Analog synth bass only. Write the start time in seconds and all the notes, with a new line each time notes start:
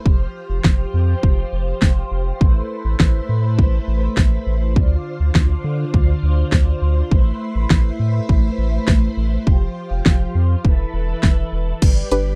0.06 F1
0.50 F1
0.64 F1
0.94 F2
1.23 F1
1.53 F1
1.82 F1
2.12 F1
2.41 A1
2.85 A1
3.00 A1
3.29 A2
3.59 A1
3.88 A1
4.17 A1
4.47 A1
4.76 D2
5.20 D2
5.35 D2
5.64 D3
5.94 D2
6.23 D2
6.52 D2
6.82 D2
7.11 A1
7.56 A1
7.70 A1
8.00 A2
8.29 A1
8.58 A1
8.88 A1
9.17 A1
9.47 F1
9.91 F1
10.06 F1
10.35 F2
10.65 E1
10.94 E1
11.23 E1
11.53 E1
11.82 G1
12.12 G1